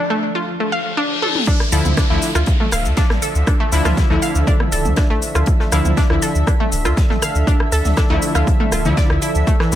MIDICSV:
0, 0, Header, 1, 9, 480
1, 0, Start_track
1, 0, Key_signature, -1, "minor"
1, 0, Tempo, 500000
1, 1414, Time_signature, 4, 2, 24, 8
1, 9363, End_track
2, 0, Start_track
2, 0, Title_t, "Ambient pad"
2, 0, Program_c, 0, 92
2, 1518, Note_on_c, 0, 76, 67
2, 9363, Note_off_c, 0, 76, 0
2, 9363, End_track
3, 0, Start_track
3, 0, Title_t, "Analog synth pad"
3, 0, Program_c, 1, 89
3, 1414, Note_on_c, 1, 50, 78
3, 1414, Note_on_c, 1, 53, 72
3, 1414, Note_on_c, 1, 62, 72
3, 1414, Note_on_c, 1, 69, 74
3, 1414, Note_on_c, 1, 76, 85
3, 9055, Note_off_c, 1, 53, 0
3, 9094, Note_on_c, 1, 72, 71
3, 9363, Note_off_c, 1, 50, 0
3, 9363, Note_off_c, 1, 62, 0
3, 9363, Note_off_c, 1, 69, 0
3, 9363, Note_off_c, 1, 72, 0
3, 9363, Note_off_c, 1, 76, 0
3, 9363, End_track
4, 0, Start_track
4, 0, Title_t, "Synth arpeggio sound"
4, 0, Program_c, 2, 84
4, 97, Note_on_c, 2, 57, 102
4, 185, Note_off_c, 2, 57, 0
4, 337, Note_on_c, 2, 65, 75
4, 390, Note_off_c, 2, 65, 0
4, 578, Note_on_c, 2, 57, 75
4, 665, Note_off_c, 2, 57, 0
4, 693, Note_on_c, 2, 77, 73
4, 811, Note_off_c, 2, 77, 0
4, 933, Note_on_c, 2, 62, 96
4, 1027, Note_off_c, 2, 62, 0
4, 1174, Note_on_c, 2, 69, 81
4, 1229, Note_off_c, 2, 69, 0
4, 1414, Note_on_c, 2, 62, 101
4, 1507, Note_off_c, 2, 62, 0
4, 1654, Note_on_c, 2, 69, 76
4, 1710, Note_off_c, 2, 69, 0
4, 1894, Note_on_c, 2, 62, 85
4, 1950, Note_off_c, 2, 62, 0
4, 2018, Note_on_c, 2, 57, 95
4, 2105, Note_off_c, 2, 57, 0
4, 2257, Note_on_c, 2, 65, 78
4, 2310, Note_off_c, 2, 65, 0
4, 2498, Note_on_c, 2, 57, 81
4, 2585, Note_off_c, 2, 57, 0
4, 2613, Note_on_c, 2, 77, 78
4, 2731, Note_off_c, 2, 77, 0
4, 2854, Note_on_c, 2, 62, 97
4, 2947, Note_off_c, 2, 62, 0
4, 3093, Note_on_c, 2, 69, 78
4, 3149, Note_off_c, 2, 69, 0
4, 3333, Note_on_c, 2, 62, 81
4, 3389, Note_off_c, 2, 62, 0
4, 3457, Note_on_c, 2, 57, 97
4, 3545, Note_off_c, 2, 57, 0
4, 3697, Note_on_c, 2, 65, 79
4, 3750, Note_off_c, 2, 65, 0
4, 3937, Note_on_c, 2, 57, 75
4, 4025, Note_off_c, 2, 57, 0
4, 4053, Note_on_c, 2, 77, 75
4, 4171, Note_off_c, 2, 77, 0
4, 4294, Note_on_c, 2, 62, 104
4, 4387, Note_off_c, 2, 62, 0
4, 4533, Note_on_c, 2, 69, 73
4, 4589, Note_off_c, 2, 69, 0
4, 4775, Note_on_c, 2, 62, 81
4, 4830, Note_off_c, 2, 62, 0
4, 4897, Note_on_c, 2, 57, 101
4, 4985, Note_off_c, 2, 57, 0
4, 5138, Note_on_c, 2, 65, 72
4, 5190, Note_off_c, 2, 65, 0
4, 5378, Note_on_c, 2, 57, 76
4, 5465, Note_off_c, 2, 57, 0
4, 5494, Note_on_c, 2, 77, 81
4, 5611, Note_off_c, 2, 77, 0
4, 5733, Note_on_c, 2, 62, 110
4, 5827, Note_off_c, 2, 62, 0
4, 5974, Note_on_c, 2, 69, 77
4, 6030, Note_off_c, 2, 69, 0
4, 6214, Note_on_c, 2, 62, 82
4, 6269, Note_off_c, 2, 62, 0
4, 6337, Note_on_c, 2, 57, 100
4, 6425, Note_off_c, 2, 57, 0
4, 6578, Note_on_c, 2, 65, 78
4, 6630, Note_off_c, 2, 65, 0
4, 6818, Note_on_c, 2, 57, 74
4, 6905, Note_off_c, 2, 57, 0
4, 6933, Note_on_c, 2, 77, 79
4, 7051, Note_off_c, 2, 77, 0
4, 7174, Note_on_c, 2, 62, 103
4, 7267, Note_off_c, 2, 62, 0
4, 7414, Note_on_c, 2, 69, 78
4, 7469, Note_off_c, 2, 69, 0
4, 7653, Note_on_c, 2, 62, 91
4, 7709, Note_off_c, 2, 62, 0
4, 7776, Note_on_c, 2, 57, 100
4, 7864, Note_off_c, 2, 57, 0
4, 8017, Note_on_c, 2, 65, 78
4, 8070, Note_off_c, 2, 65, 0
4, 8257, Note_on_c, 2, 57, 76
4, 8345, Note_off_c, 2, 57, 0
4, 8373, Note_on_c, 2, 65, 75
4, 8429, Note_off_c, 2, 65, 0
4, 8613, Note_on_c, 2, 74, 84
4, 8669, Note_off_c, 2, 74, 0
4, 8853, Note_on_c, 2, 64, 78
4, 8971, Note_off_c, 2, 64, 0
4, 9094, Note_on_c, 2, 57, 84
4, 9149, Note_off_c, 2, 57, 0
4, 9216, Note_on_c, 2, 52, 96
4, 9304, Note_off_c, 2, 52, 0
4, 9363, End_track
5, 0, Start_track
5, 0, Title_t, "Synth stab"
5, 0, Program_c, 3, 62
5, 1654, Note_on_c, 3, 50, 86
5, 1654, Note_on_c, 3, 53, 83
5, 1654, Note_on_c, 3, 64, 99
5, 1854, Note_off_c, 3, 50, 0
5, 1854, Note_off_c, 3, 53, 0
5, 1854, Note_off_c, 3, 64, 0
5, 2017, Note_on_c, 3, 50, 83
5, 2017, Note_on_c, 3, 53, 79
5, 2017, Note_on_c, 3, 64, 98
5, 2215, Note_off_c, 3, 50, 0
5, 2215, Note_off_c, 3, 53, 0
5, 2215, Note_off_c, 3, 64, 0
5, 3573, Note_on_c, 3, 64, 106
5, 3574, Note_on_c, 3, 50, 97
5, 3574, Note_on_c, 3, 53, 87
5, 3907, Note_off_c, 3, 64, 0
5, 3908, Note_off_c, 3, 50, 0
5, 3908, Note_off_c, 3, 53, 0
5, 3937, Note_on_c, 3, 53, 81
5, 3938, Note_on_c, 3, 50, 91
5, 3938, Note_on_c, 3, 64, 99
5, 5466, Note_off_c, 3, 50, 0
5, 5466, Note_off_c, 3, 53, 0
5, 5466, Note_off_c, 3, 64, 0
5, 5494, Note_on_c, 3, 50, 89
5, 5494, Note_on_c, 3, 53, 82
5, 5494, Note_on_c, 3, 64, 101
5, 5694, Note_off_c, 3, 50, 0
5, 5694, Note_off_c, 3, 53, 0
5, 5694, Note_off_c, 3, 64, 0
5, 5857, Note_on_c, 3, 50, 85
5, 5857, Note_on_c, 3, 53, 81
5, 5857, Note_on_c, 3, 64, 91
5, 6055, Note_off_c, 3, 50, 0
5, 6055, Note_off_c, 3, 53, 0
5, 6055, Note_off_c, 3, 64, 0
5, 7777, Note_on_c, 3, 50, 89
5, 7777, Note_on_c, 3, 53, 83
5, 7777, Note_on_c, 3, 64, 100
5, 8472, Note_off_c, 3, 50, 0
5, 8472, Note_off_c, 3, 53, 0
5, 8472, Note_off_c, 3, 64, 0
5, 8497, Note_on_c, 3, 50, 97
5, 8497, Note_on_c, 3, 53, 86
5, 8497, Note_on_c, 3, 64, 103
5, 9079, Note_off_c, 3, 50, 0
5, 9079, Note_off_c, 3, 53, 0
5, 9080, Note_off_c, 3, 64, 0
5, 9333, Note_on_c, 3, 48, 85
5, 9333, Note_on_c, 3, 64, 98
5, 9334, Note_on_c, 3, 57, 86
5, 9363, Note_off_c, 3, 48, 0
5, 9363, Note_off_c, 3, 57, 0
5, 9363, Note_off_c, 3, 64, 0
5, 9363, End_track
6, 0, Start_track
6, 0, Title_t, "Analog synth bass"
6, 0, Program_c, 4, 38
6, 1653, Note_on_c, 4, 38, 96
6, 1735, Note_off_c, 4, 38, 0
6, 1777, Note_on_c, 4, 38, 83
6, 1854, Note_off_c, 4, 38, 0
6, 2017, Note_on_c, 4, 38, 79
6, 2094, Note_off_c, 4, 38, 0
6, 2256, Note_on_c, 4, 38, 89
6, 2333, Note_off_c, 4, 38, 0
6, 2612, Note_on_c, 4, 26, 93
6, 2736, Note_on_c, 4, 38, 86
6, 2750, Note_off_c, 4, 26, 0
6, 2813, Note_off_c, 4, 38, 0
6, 2976, Note_on_c, 4, 33, 76
6, 3053, Note_off_c, 4, 33, 0
6, 3217, Note_on_c, 4, 38, 81
6, 3293, Note_off_c, 4, 38, 0
6, 3573, Note_on_c, 4, 38, 100
6, 3655, Note_off_c, 4, 38, 0
6, 3697, Note_on_c, 4, 38, 82
6, 3774, Note_off_c, 4, 38, 0
6, 3936, Note_on_c, 4, 38, 78
6, 4013, Note_off_c, 4, 38, 0
6, 4176, Note_on_c, 4, 38, 92
6, 4253, Note_off_c, 4, 38, 0
6, 4533, Note_on_c, 4, 26, 94
6, 4656, Note_on_c, 4, 38, 83
6, 4671, Note_off_c, 4, 26, 0
6, 4733, Note_off_c, 4, 38, 0
6, 4897, Note_on_c, 4, 33, 80
6, 4974, Note_off_c, 4, 33, 0
6, 5137, Note_on_c, 4, 38, 82
6, 5213, Note_off_c, 4, 38, 0
6, 5493, Note_on_c, 4, 38, 97
6, 5575, Note_off_c, 4, 38, 0
6, 5616, Note_on_c, 4, 38, 89
6, 5693, Note_off_c, 4, 38, 0
6, 5857, Note_on_c, 4, 38, 80
6, 5934, Note_off_c, 4, 38, 0
6, 6097, Note_on_c, 4, 38, 89
6, 6174, Note_off_c, 4, 38, 0
6, 6454, Note_on_c, 4, 26, 97
6, 6577, Note_on_c, 4, 38, 84
6, 6592, Note_off_c, 4, 26, 0
6, 6654, Note_off_c, 4, 38, 0
6, 6818, Note_on_c, 4, 33, 82
6, 6894, Note_off_c, 4, 33, 0
6, 7058, Note_on_c, 4, 38, 83
6, 7134, Note_off_c, 4, 38, 0
6, 7413, Note_on_c, 4, 38, 96
6, 7495, Note_off_c, 4, 38, 0
6, 7537, Note_on_c, 4, 38, 81
6, 7613, Note_off_c, 4, 38, 0
6, 7778, Note_on_c, 4, 38, 80
6, 7854, Note_off_c, 4, 38, 0
6, 8018, Note_on_c, 4, 38, 89
6, 8094, Note_off_c, 4, 38, 0
6, 8374, Note_on_c, 4, 26, 95
6, 8498, Note_on_c, 4, 38, 80
6, 8512, Note_off_c, 4, 26, 0
6, 8574, Note_off_c, 4, 38, 0
6, 8738, Note_on_c, 4, 38, 80
6, 8814, Note_off_c, 4, 38, 0
6, 8977, Note_on_c, 4, 38, 82
6, 9053, Note_off_c, 4, 38, 0
6, 9333, Note_on_c, 4, 38, 97
6, 9363, Note_off_c, 4, 38, 0
6, 9363, End_track
7, 0, Start_track
7, 0, Title_t, "Downlifter"
7, 0, Program_c, 5, 103
7, 1414, Note_on_c, 5, 60, 76
7, 5254, Note_off_c, 5, 60, 0
7, 9363, End_track
8, 0, Start_track
8, 0, Title_t, "Reverse cymbal"
8, 0, Program_c, 6, 119
8, 453, Note_on_c, 6, 60, 78
8, 1414, Note_off_c, 6, 60, 0
8, 9363, End_track
9, 0, Start_track
9, 0, Title_t, "Drums"
9, 1174, Note_on_c, 9, 48, 63
9, 1270, Note_off_c, 9, 48, 0
9, 1298, Note_on_c, 9, 47, 75
9, 1394, Note_off_c, 9, 47, 0
9, 1412, Note_on_c, 9, 42, 90
9, 1414, Note_on_c, 9, 36, 120
9, 1415, Note_on_c, 9, 82, 33
9, 1508, Note_off_c, 9, 42, 0
9, 1510, Note_off_c, 9, 36, 0
9, 1511, Note_off_c, 9, 82, 0
9, 1538, Note_on_c, 9, 37, 46
9, 1538, Note_on_c, 9, 38, 39
9, 1634, Note_off_c, 9, 37, 0
9, 1634, Note_off_c, 9, 38, 0
9, 1654, Note_on_c, 9, 46, 106
9, 1654, Note_on_c, 9, 82, 83
9, 1660, Note_on_c, 9, 42, 73
9, 1750, Note_off_c, 9, 46, 0
9, 1750, Note_off_c, 9, 82, 0
9, 1756, Note_off_c, 9, 42, 0
9, 1778, Note_on_c, 9, 45, 85
9, 1778, Note_on_c, 9, 82, 46
9, 1874, Note_off_c, 9, 45, 0
9, 1874, Note_off_c, 9, 82, 0
9, 1892, Note_on_c, 9, 42, 85
9, 1894, Note_on_c, 9, 36, 116
9, 1894, Note_on_c, 9, 38, 107
9, 1895, Note_on_c, 9, 37, 51
9, 1895, Note_on_c, 9, 82, 36
9, 1988, Note_off_c, 9, 42, 0
9, 1990, Note_off_c, 9, 36, 0
9, 1990, Note_off_c, 9, 38, 0
9, 1991, Note_off_c, 9, 37, 0
9, 1991, Note_off_c, 9, 82, 0
9, 2127, Note_on_c, 9, 42, 71
9, 2133, Note_on_c, 9, 38, 46
9, 2134, Note_on_c, 9, 46, 95
9, 2134, Note_on_c, 9, 82, 81
9, 2223, Note_off_c, 9, 42, 0
9, 2229, Note_off_c, 9, 38, 0
9, 2230, Note_off_c, 9, 46, 0
9, 2230, Note_off_c, 9, 82, 0
9, 2258, Note_on_c, 9, 37, 50
9, 2258, Note_on_c, 9, 82, 47
9, 2354, Note_off_c, 9, 37, 0
9, 2354, Note_off_c, 9, 82, 0
9, 2364, Note_on_c, 9, 42, 85
9, 2374, Note_on_c, 9, 36, 120
9, 2374, Note_on_c, 9, 82, 34
9, 2460, Note_off_c, 9, 42, 0
9, 2470, Note_off_c, 9, 36, 0
9, 2470, Note_off_c, 9, 82, 0
9, 2498, Note_on_c, 9, 45, 85
9, 2594, Note_off_c, 9, 45, 0
9, 2605, Note_on_c, 9, 42, 70
9, 2614, Note_on_c, 9, 37, 53
9, 2614, Note_on_c, 9, 46, 112
9, 2614, Note_on_c, 9, 82, 89
9, 2701, Note_off_c, 9, 42, 0
9, 2710, Note_off_c, 9, 37, 0
9, 2710, Note_off_c, 9, 46, 0
9, 2710, Note_off_c, 9, 82, 0
9, 2738, Note_on_c, 9, 82, 45
9, 2834, Note_off_c, 9, 82, 0
9, 2849, Note_on_c, 9, 42, 94
9, 2850, Note_on_c, 9, 38, 119
9, 2854, Note_on_c, 9, 36, 115
9, 2855, Note_on_c, 9, 82, 36
9, 2945, Note_off_c, 9, 42, 0
9, 2946, Note_off_c, 9, 38, 0
9, 2950, Note_off_c, 9, 36, 0
9, 2951, Note_off_c, 9, 82, 0
9, 2976, Note_on_c, 9, 38, 52
9, 2978, Note_on_c, 9, 37, 51
9, 2978, Note_on_c, 9, 45, 80
9, 3072, Note_off_c, 9, 38, 0
9, 3074, Note_off_c, 9, 37, 0
9, 3074, Note_off_c, 9, 45, 0
9, 3093, Note_on_c, 9, 42, 65
9, 3094, Note_on_c, 9, 46, 90
9, 3094, Note_on_c, 9, 82, 86
9, 3189, Note_off_c, 9, 42, 0
9, 3190, Note_off_c, 9, 46, 0
9, 3190, Note_off_c, 9, 82, 0
9, 3217, Note_on_c, 9, 82, 48
9, 3313, Note_off_c, 9, 82, 0
9, 3333, Note_on_c, 9, 36, 126
9, 3334, Note_on_c, 9, 37, 50
9, 3334, Note_on_c, 9, 42, 93
9, 3334, Note_on_c, 9, 82, 35
9, 3429, Note_off_c, 9, 36, 0
9, 3430, Note_off_c, 9, 37, 0
9, 3430, Note_off_c, 9, 42, 0
9, 3430, Note_off_c, 9, 82, 0
9, 3569, Note_on_c, 9, 46, 84
9, 3574, Note_off_c, 9, 46, 0
9, 3574, Note_on_c, 9, 46, 109
9, 3574, Note_on_c, 9, 82, 81
9, 3670, Note_off_c, 9, 46, 0
9, 3670, Note_off_c, 9, 82, 0
9, 3690, Note_on_c, 9, 38, 40
9, 3698, Note_on_c, 9, 37, 51
9, 3698, Note_on_c, 9, 45, 78
9, 3698, Note_on_c, 9, 82, 48
9, 3786, Note_off_c, 9, 38, 0
9, 3794, Note_off_c, 9, 37, 0
9, 3794, Note_off_c, 9, 45, 0
9, 3794, Note_off_c, 9, 82, 0
9, 3814, Note_on_c, 9, 36, 117
9, 3814, Note_on_c, 9, 42, 91
9, 3814, Note_on_c, 9, 82, 39
9, 3818, Note_on_c, 9, 38, 110
9, 3910, Note_off_c, 9, 36, 0
9, 3910, Note_off_c, 9, 42, 0
9, 3910, Note_off_c, 9, 82, 0
9, 3914, Note_off_c, 9, 38, 0
9, 4051, Note_on_c, 9, 42, 71
9, 4054, Note_on_c, 9, 46, 98
9, 4054, Note_on_c, 9, 82, 81
9, 4147, Note_off_c, 9, 42, 0
9, 4150, Note_off_c, 9, 46, 0
9, 4150, Note_off_c, 9, 82, 0
9, 4178, Note_on_c, 9, 82, 46
9, 4274, Note_off_c, 9, 82, 0
9, 4293, Note_on_c, 9, 36, 117
9, 4294, Note_on_c, 9, 82, 34
9, 4296, Note_on_c, 9, 42, 84
9, 4389, Note_off_c, 9, 36, 0
9, 4390, Note_off_c, 9, 82, 0
9, 4392, Note_off_c, 9, 42, 0
9, 4417, Note_on_c, 9, 37, 47
9, 4417, Note_on_c, 9, 45, 81
9, 4513, Note_off_c, 9, 37, 0
9, 4513, Note_off_c, 9, 45, 0
9, 4534, Note_on_c, 9, 46, 119
9, 4534, Note_on_c, 9, 82, 89
9, 4537, Note_on_c, 9, 42, 78
9, 4630, Note_off_c, 9, 46, 0
9, 4630, Note_off_c, 9, 82, 0
9, 4633, Note_off_c, 9, 42, 0
9, 4658, Note_on_c, 9, 45, 78
9, 4658, Note_on_c, 9, 82, 46
9, 4754, Note_off_c, 9, 45, 0
9, 4754, Note_off_c, 9, 82, 0
9, 4765, Note_on_c, 9, 42, 87
9, 4769, Note_on_c, 9, 38, 115
9, 4774, Note_on_c, 9, 36, 120
9, 4774, Note_on_c, 9, 37, 48
9, 4774, Note_on_c, 9, 82, 36
9, 4861, Note_off_c, 9, 42, 0
9, 4865, Note_off_c, 9, 38, 0
9, 4870, Note_off_c, 9, 36, 0
9, 4870, Note_off_c, 9, 37, 0
9, 4870, Note_off_c, 9, 82, 0
9, 5013, Note_on_c, 9, 42, 79
9, 5014, Note_on_c, 9, 46, 97
9, 5014, Note_on_c, 9, 82, 83
9, 5109, Note_off_c, 9, 42, 0
9, 5110, Note_off_c, 9, 46, 0
9, 5110, Note_off_c, 9, 82, 0
9, 5138, Note_on_c, 9, 37, 52
9, 5138, Note_on_c, 9, 82, 49
9, 5234, Note_off_c, 9, 37, 0
9, 5234, Note_off_c, 9, 82, 0
9, 5243, Note_on_c, 9, 42, 86
9, 5254, Note_on_c, 9, 36, 121
9, 5254, Note_on_c, 9, 82, 36
9, 5339, Note_off_c, 9, 42, 0
9, 5350, Note_off_c, 9, 36, 0
9, 5350, Note_off_c, 9, 82, 0
9, 5376, Note_on_c, 9, 38, 40
9, 5472, Note_off_c, 9, 38, 0
9, 5488, Note_on_c, 9, 42, 62
9, 5494, Note_on_c, 9, 37, 53
9, 5494, Note_on_c, 9, 46, 114
9, 5494, Note_on_c, 9, 82, 83
9, 5584, Note_off_c, 9, 42, 0
9, 5590, Note_off_c, 9, 37, 0
9, 5590, Note_off_c, 9, 46, 0
9, 5590, Note_off_c, 9, 82, 0
9, 5617, Note_on_c, 9, 45, 83
9, 5617, Note_on_c, 9, 82, 48
9, 5713, Note_off_c, 9, 45, 0
9, 5713, Note_off_c, 9, 82, 0
9, 5733, Note_on_c, 9, 82, 36
9, 5734, Note_on_c, 9, 36, 125
9, 5735, Note_on_c, 9, 42, 100
9, 5738, Note_on_c, 9, 38, 109
9, 5829, Note_off_c, 9, 82, 0
9, 5830, Note_off_c, 9, 36, 0
9, 5831, Note_off_c, 9, 42, 0
9, 5834, Note_off_c, 9, 38, 0
9, 5856, Note_on_c, 9, 37, 53
9, 5952, Note_off_c, 9, 37, 0
9, 5971, Note_on_c, 9, 38, 42
9, 5973, Note_on_c, 9, 46, 97
9, 5973, Note_on_c, 9, 82, 85
9, 5979, Note_on_c, 9, 42, 66
9, 6067, Note_off_c, 9, 38, 0
9, 6069, Note_off_c, 9, 46, 0
9, 6069, Note_off_c, 9, 82, 0
9, 6075, Note_off_c, 9, 42, 0
9, 6097, Note_on_c, 9, 82, 46
9, 6193, Note_off_c, 9, 82, 0
9, 6214, Note_on_c, 9, 36, 118
9, 6214, Note_on_c, 9, 37, 51
9, 6214, Note_on_c, 9, 82, 36
9, 6221, Note_on_c, 9, 42, 90
9, 6310, Note_off_c, 9, 36, 0
9, 6310, Note_off_c, 9, 37, 0
9, 6310, Note_off_c, 9, 82, 0
9, 6317, Note_off_c, 9, 42, 0
9, 6337, Note_on_c, 9, 45, 75
9, 6433, Note_off_c, 9, 45, 0
9, 6453, Note_on_c, 9, 42, 76
9, 6454, Note_on_c, 9, 46, 115
9, 6454, Note_on_c, 9, 82, 82
9, 6549, Note_off_c, 9, 42, 0
9, 6550, Note_off_c, 9, 46, 0
9, 6550, Note_off_c, 9, 82, 0
9, 6577, Note_on_c, 9, 37, 49
9, 6577, Note_on_c, 9, 82, 43
9, 6673, Note_off_c, 9, 37, 0
9, 6673, Note_off_c, 9, 82, 0
9, 6693, Note_on_c, 9, 38, 116
9, 6694, Note_on_c, 9, 36, 123
9, 6694, Note_on_c, 9, 82, 33
9, 6698, Note_on_c, 9, 42, 83
9, 6789, Note_off_c, 9, 38, 0
9, 6790, Note_off_c, 9, 36, 0
9, 6790, Note_off_c, 9, 82, 0
9, 6794, Note_off_c, 9, 42, 0
9, 6818, Note_on_c, 9, 45, 76
9, 6821, Note_on_c, 9, 38, 46
9, 6914, Note_off_c, 9, 45, 0
9, 6917, Note_off_c, 9, 38, 0
9, 6934, Note_on_c, 9, 37, 50
9, 6934, Note_on_c, 9, 46, 94
9, 6934, Note_on_c, 9, 82, 85
9, 6936, Note_on_c, 9, 42, 69
9, 7030, Note_off_c, 9, 37, 0
9, 7030, Note_off_c, 9, 46, 0
9, 7030, Note_off_c, 9, 82, 0
9, 7032, Note_off_c, 9, 42, 0
9, 7058, Note_on_c, 9, 82, 47
9, 7154, Note_off_c, 9, 82, 0
9, 7174, Note_on_c, 9, 36, 123
9, 7174, Note_on_c, 9, 82, 32
9, 7181, Note_on_c, 9, 42, 84
9, 7270, Note_off_c, 9, 36, 0
9, 7270, Note_off_c, 9, 82, 0
9, 7277, Note_off_c, 9, 42, 0
9, 7297, Note_on_c, 9, 37, 54
9, 7393, Note_off_c, 9, 37, 0
9, 7411, Note_on_c, 9, 46, 72
9, 7413, Note_off_c, 9, 46, 0
9, 7413, Note_on_c, 9, 46, 113
9, 7413, Note_on_c, 9, 82, 76
9, 7509, Note_off_c, 9, 46, 0
9, 7509, Note_off_c, 9, 82, 0
9, 7537, Note_on_c, 9, 45, 84
9, 7537, Note_on_c, 9, 82, 46
9, 7538, Note_on_c, 9, 38, 38
9, 7633, Note_off_c, 9, 45, 0
9, 7633, Note_off_c, 9, 82, 0
9, 7634, Note_off_c, 9, 38, 0
9, 7649, Note_on_c, 9, 42, 90
9, 7653, Note_on_c, 9, 37, 56
9, 7653, Note_on_c, 9, 82, 35
9, 7654, Note_on_c, 9, 36, 119
9, 7654, Note_on_c, 9, 38, 125
9, 7745, Note_off_c, 9, 42, 0
9, 7749, Note_off_c, 9, 37, 0
9, 7749, Note_off_c, 9, 82, 0
9, 7750, Note_off_c, 9, 36, 0
9, 7750, Note_off_c, 9, 38, 0
9, 7893, Note_on_c, 9, 46, 92
9, 7893, Note_on_c, 9, 82, 81
9, 7894, Note_on_c, 9, 42, 72
9, 7989, Note_off_c, 9, 46, 0
9, 7989, Note_off_c, 9, 82, 0
9, 7990, Note_off_c, 9, 42, 0
9, 8017, Note_on_c, 9, 37, 52
9, 8017, Note_on_c, 9, 82, 43
9, 8113, Note_off_c, 9, 37, 0
9, 8113, Note_off_c, 9, 82, 0
9, 8133, Note_on_c, 9, 82, 34
9, 8134, Note_on_c, 9, 36, 119
9, 8137, Note_on_c, 9, 42, 89
9, 8229, Note_off_c, 9, 82, 0
9, 8230, Note_off_c, 9, 36, 0
9, 8233, Note_off_c, 9, 42, 0
9, 8257, Note_on_c, 9, 45, 81
9, 8353, Note_off_c, 9, 45, 0
9, 8373, Note_on_c, 9, 37, 55
9, 8373, Note_on_c, 9, 46, 117
9, 8373, Note_on_c, 9, 82, 82
9, 8377, Note_on_c, 9, 42, 69
9, 8469, Note_off_c, 9, 37, 0
9, 8469, Note_off_c, 9, 46, 0
9, 8469, Note_off_c, 9, 82, 0
9, 8473, Note_off_c, 9, 42, 0
9, 8497, Note_on_c, 9, 45, 81
9, 8497, Note_on_c, 9, 82, 44
9, 8593, Note_off_c, 9, 45, 0
9, 8593, Note_off_c, 9, 82, 0
9, 8613, Note_on_c, 9, 36, 125
9, 8613, Note_on_c, 9, 38, 108
9, 8613, Note_on_c, 9, 82, 33
9, 8616, Note_on_c, 9, 42, 94
9, 8709, Note_off_c, 9, 36, 0
9, 8709, Note_off_c, 9, 38, 0
9, 8709, Note_off_c, 9, 82, 0
9, 8712, Note_off_c, 9, 42, 0
9, 8736, Note_on_c, 9, 37, 57
9, 8832, Note_off_c, 9, 37, 0
9, 8849, Note_on_c, 9, 42, 72
9, 8852, Note_on_c, 9, 46, 95
9, 8852, Note_on_c, 9, 82, 74
9, 8945, Note_off_c, 9, 42, 0
9, 8948, Note_off_c, 9, 46, 0
9, 8948, Note_off_c, 9, 82, 0
9, 8976, Note_on_c, 9, 82, 45
9, 9072, Note_off_c, 9, 82, 0
9, 9093, Note_on_c, 9, 36, 121
9, 9093, Note_on_c, 9, 82, 34
9, 9094, Note_on_c, 9, 42, 81
9, 9189, Note_off_c, 9, 36, 0
9, 9189, Note_off_c, 9, 82, 0
9, 9190, Note_off_c, 9, 42, 0
9, 9217, Note_on_c, 9, 37, 55
9, 9223, Note_on_c, 9, 38, 41
9, 9313, Note_off_c, 9, 37, 0
9, 9319, Note_off_c, 9, 38, 0
9, 9333, Note_on_c, 9, 46, 106
9, 9333, Note_on_c, 9, 82, 76
9, 9363, Note_off_c, 9, 46, 0
9, 9363, Note_off_c, 9, 82, 0
9, 9363, End_track
0, 0, End_of_file